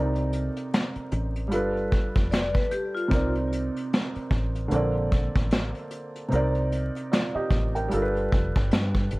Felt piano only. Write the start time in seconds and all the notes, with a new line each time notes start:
Already playing: C3 C4 A#4 D5
0.00 D#4
1.48 G3 D4 F4
1.53 A4 B4
3.08 C3 C4 D#4
3.14 A#4 D5
4.68 D3 A#3 C4
4.74 A4 D5
6.29 C3 C4 D#4
6.34 A#4 D5
7.12 F4 D5
7.35 G4 D#5
7.75 A#4 G5
7.88 G3 D4 F4
7.94 A4 A#4
8.02 B4